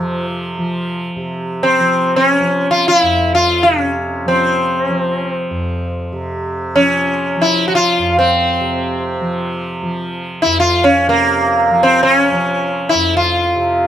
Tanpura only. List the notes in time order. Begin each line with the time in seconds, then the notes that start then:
Already playing: F2 C3 F3
0.58 F3
1.16 C3
1.79 F3
2.41 F3
3.03 F2
3.64 C3
4.26 F3
4.89 F3
5.51 F2
6.12 C3
6.76 F3
7.37 F3
7.98 F2
8.60 C3
9.21 F3
9.83 F3
10.45 F2
11.08 C3
11.70 F3
12.32 F3
12.94 F2
13.56 C3